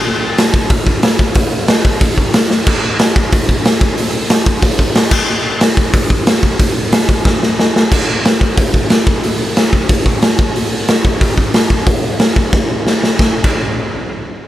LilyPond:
\new DrumStaff \with { instrumentName = "Drums" } \drummode { \time 4/4 \tempo 4 = 183 r4 <hho sn>8 bd8 <hho bd>8 bd8 <hho sn>8 bd8 | <hho bd>4 <hho sn>8 bd8 <hho bd>8 bd8 <hho sn>8 sn8 | <cymc bd>4 <hho sn>8 bd8 <hho bd>8 bd8 <hho sn>8 bd8 | hho4 <hho sn>8 bd8 <hho bd>8 bd8 <hho sn>8 <cymc bd>8 |
r4 <hho sn>8 bd8 <hho bd>8 bd8 <hho sn>8 bd8 | <hho bd>4 <hho sn>8 bd8 <bd sn>8 sn8 sn8 sn8 | <cymc bd>4 <hho sn>8 bd8 <hho bd>8 bd8 <hho sn>8 bd8 | hho4 <hho sn>8 bd8 <hho bd>8 bd8 <hho sn>8 bd8 |
hho4 <hho sn>8 bd8 <hho bd>8 bd8 <hho sn>8 bd8 | <hho bd>4 <hho sn>8 bd8 <bd sn>4 sn8 sn8 | <bd sn>8. <cymc bd>16 r4 r4 r4 | }